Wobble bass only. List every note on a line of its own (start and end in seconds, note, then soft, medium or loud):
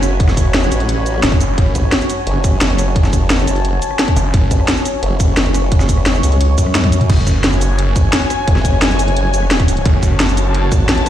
0.00 0.70 F#1 loud
0.72 1.22 A1 loud
1.75 1.91 A1 loud
2.27 2.60 F#1 medium
2.61 3.46 F#1 loud
3.48 3.81 F#1 loud
4.51 4.67 A1 loud
5.03 5.36 F#1 loud
5.37 6.22 F#1 loud
6.23 6.56 C#2 loud
6.58 7.08 F#2 medium
7.96 8.12 G#1 medium
8.48 9.47 F#1 loud
9.47 9.69 E1 loud
9.69 9.84 D1 loud
10.72 10.88 G#1 medium
10.89 11.09 A1 loud